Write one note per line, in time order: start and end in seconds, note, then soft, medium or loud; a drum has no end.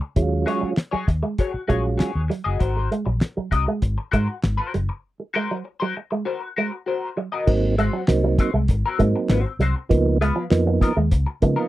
0.01 muted clean electric guitar stroke soft
0.16 0.44 D#2 medium
0.16 0.73 F#3 medium
0.16 0.73 G#3 medium
0.16 0.73 C#4 medium
0.16 0.23 E4 medium
0.16 kick loud
0.16 closed hi-hat medium
0.23 0.77 F4 loud
0.31 muted clean electric guitar stroke soft
0.46 0.58 G#3 medium
0.46 0.69 F#4 medium
0.46 0.69 G#4 medium
0.46 0.70 C#5 loud
0.46 closed hi-hat medium
0.61 0.73 F#3 medium
0.61 muted fingered electric bass stroke soft
0.77 muted clean electric guitar stroke soft
0.77 snare loud
0.77 clap medium
0.77 closed hi-hat medium
0.91 1.04 F#3 medium
0.91 1.06 F#4 medium
0.91 1.06 G#4 medium
0.91 1.07 C#5 medium
0.91 muted fingered electric bass stroke soft
1.07 1.21 D#2 medium
1.07 muted clean electric guitar stroke soft
1.07 kick medium
1.07 closed hi-hat medium
1.23 1.34 G#3 medium
1.23 muted clean electric guitar stroke soft
1.38 1.61 F#4 medium
1.38 1.53 G#4 medium
1.38 1.52 C#5 medium
1.38 kick medium
1.38 closed hi-hat medium
1.53 muted clean electric guitar stroke medium
1.53 muted fingered electric bass stroke medium
1.68 1.96 A#1 medium
1.68 2.12 F#3 medium
1.68 1.80 G#3 medium
1.68 2.12 G#3 medium
1.68 2.12 C#4 medium
1.68 2.12 F4 medium
1.68 1.86 F#4 medium
1.68 1.84 G#4 medium
1.68 1.83 C#5 medium
1.68 kick medium
1.68 closed hi-hat medium
1.84 muted clean electric guitar stroke soft
1.98 2.21 F#4 medium
1.98 2.21 G#4 medium
1.98 2.21 C#5 medium
1.98 snare loud
1.98 clap loud
1.98 closed hi-hat medium
2.15 2.29 D#2 medium
2.28 2.41 F#3 medium
2.28 muted clean electric guitar stroke soft
2.28 closed hi-hat medium
2.44 2.59 F#1 medium
2.44 2.58 F#4 medium
2.44 2.59 G#4 medium
2.44 2.61 D#5 medium
2.59 2.87 G#1 medium
2.59 2.88 F#4 medium
2.59 2.88 A#4 medium
2.59 2.89 C5 medium
2.59 kick medium
2.59 closed hi-hat medium
2.77 muted clean electric guitar stroke soft
2.92 3.02 G#3 medium
2.92 closed hi-hat medium
3.06 3.20 A#1 medium
3.06 3.17 F#3 medium
3.06 muted clean electric guitar stroke soft
3.21 muted clean electric guitar stroke soft
3.21 snare loud
3.21 clap medium
3.21 closed hi-hat medium
3.37 3.48 F#3 medium
3.37 muted fingered electric bass stroke soft
3.51 3.65 C2 medium
3.51 3.69 F#4 soft
3.51 3.66 A#4 medium
3.51 3.66 D#5 medium
3.51 muted clean electric guitar stroke soft
3.51 kick medium
3.51 closed hi-hat medium
3.66 3.79 G#3 medium
3.66 muted clean electric guitar stroke soft
3.82 3.96 G#1 loud
3.82 muted clean electric guitar stroke soft
3.82 kick medium
3.82 closed hi-hat medium
3.98 muted clean electric guitar stroke soft
4.12 4.27 G#2 medium
4.12 4.24 G#3 medium
4.12 4.34 F#4 medium
4.12 4.28 A#4 medium
4.12 4.27 C5 medium
4.12 kick medium
4.12 closed hi-hat medium
4.29 muted clean electric guitar stroke soft
4.43 4.57 G#1 loud
4.43 muted clean electric guitar stroke soft
4.43 snare loud
4.43 clap loud
4.43 closed hi-hat medium
4.57 4.72 F#4 medium
4.57 4.73 A#4 medium
4.57 4.73 C5 medium
4.73 4.88 F#1 medium
4.73 4.85 F#3 medium
4.73 muted clean electric guitar stroke soft
4.73 closed hi-hat medium
4.89 muted clean electric guitar stroke soft
5.20 muted clean electric guitar stroke soft
5.34 5.47 G#3 medium
5.34 5.56 F#4 medium
5.34 5.57 A#4 medium
5.34 5.57 C5 loud
5.51 5.62 F#3 medium
5.64 muted clean electric guitar stroke soft
5.80 5.93 F#3 medium
5.80 5.94 F#4 medium
5.80 5.95 A#4 medium
5.80 5.95 C5 medium
5.95 muted clean electric guitar stroke soft
6.11 6.23 G#3 medium
6.11 muted clean electric guitar stroke soft
6.25 6.48 F#4 medium
6.25 6.42 A#4 medium
6.25 6.40 C5 medium
6.42 muted clean electric guitar stroke soft
6.56 6.68 G#3 medium
6.56 6.74 F#4 medium
6.56 6.72 A#4 medium
6.56 6.71 C5 medium
6.72 muted clean electric guitar stroke soft
6.86 7.08 F#4 medium
6.86 7.09 A#4 medium
6.86 7.09 C5 medium
7.17 7.28 F#3 medium
7.17 muted clean electric guitar stroke soft
7.32 7.50 F#4 medium
7.32 7.50 A#4 medium
7.32 7.49 D#5 medium
7.47 7.88 G#1 medium
7.47 7.76 F#3 medium
7.47 7.76 A#3 medium
7.47 7.76 C4 medium
7.47 7.76 D#4 medium
7.47 kick loud
7.47 crash medium
7.63 muted clean electric guitar stroke soft
7.78 7.89 G#3 medium
7.78 8.00 C4 medium
7.78 8.01 F#4 medium
7.78 8.01 C5 medium
7.78 closed hi-hat medium
7.93 8.04 F#3 medium
8.08 8.35 C2 loud
8.08 8.51 F#3 medium
8.08 8.51 A#3 medium
8.08 8.51 C4 medium
8.08 8.51 D#4 loud
8.08 muted clean electric guitar stroke soft
8.08 snare loud
8.08 clap medium
8.08 closed hi-hat loud
8.24 8.35 F#3 medium
8.38 8.56 C4 medium
8.38 8.54 F#4 medium
8.38 8.54 C5 medium
8.38 muted clean electric guitar stroke soft
8.38 kick medium
8.38 closed hi-hat medium
8.54 8.67 C2 medium
8.54 8.65 G#3 medium
8.54 muted clean electric guitar stroke soft
8.68 8.82 G#1 medium
8.68 muted clean electric guitar stroke soft
8.68 kick medium
8.68 closed hi-hat medium
8.86 8.99 C4 medium
8.86 8.99 F#4 medium
8.86 9.00 A#4 medium
8.99 9.13 G#2 medium
8.99 9.41 F#3 medium
8.99 9.10 G#3 medium
8.99 9.41 A#3 medium
8.99 9.42 C4 medium
8.99 9.42 D#4 medium
8.99 muted clean electric guitar stroke soft
8.99 kick medium
8.99 closed hi-hat medium
9.16 muted clean electric guitar stroke medium
9.29 9.43 G#1 medium
9.29 9.52 C4 medium
9.29 9.46 F#4 medium
9.29 9.46 C5 medium
9.29 snare loud
9.29 clap medium
9.29 closed hi-hat medium
9.46 muted clean electric guitar stroke soft
9.59 9.73 C2 medium
9.59 9.71 F#3 medium
9.59 9.78 C4 medium
9.59 9.76 F#4 medium
9.59 9.76 C5 medium
9.59 closed hi-hat medium
9.76 muted clean electric guitar stroke soft
9.89 10.30 C#2 medium
9.89 10.18 F3 loud
9.89 10.18 A#3 medium
9.89 10.18 B3 medium
9.89 10.18 D#4 loud
9.89 kick loud
9.89 closed hi-hat medium
10.05 muted clean electric guitar stroke soft
10.21 10.32 G#3 medium
10.21 10.42 B3 medium
10.21 10.43 F4 loud
10.21 10.43 B4 loud
10.21 closed hi-hat medium
10.36 10.47 F3 medium
10.50 10.78 F2 medium
10.50 10.93 F3 medium
10.50 10.93 A#3 medium
10.50 10.93 B3 medium
10.50 10.93 D#4 loud
10.50 muted clean electric guitar stroke soft
10.50 snare loud
10.50 clap medium
10.50 closed hi-hat medium
10.67 10.77 F3 medium
10.81 10.98 B3 medium
10.81 10.97 F4 medium
10.81 10.96 A#4 medium
10.81 muted clean electric guitar stroke soft
10.81 kick loud
10.81 closed hi-hat medium
10.97 11.10 D#2 loud
10.97 11.07 G#3 medium
10.97 muted clean electric guitar stroke soft
11.11 11.25 C#2 medium
11.11 muted clean electric guitar stroke soft
11.11 kick medium
11.11 closed hi-hat medium
11.27 muted clean electric guitar stroke medium
11.42 11.55 C#3 loud
11.42 11.68 F3 medium
11.42 11.53 G#3 medium
11.42 11.68 A#3 medium
11.42 11.68 B3 medium
11.42 11.68 D#4 medium
11.42 kick medium
11.42 closed hi-hat medium
11.56 11.68 B3 medium
11.56 11.68 F4 medium
11.56 11.68 A#4 medium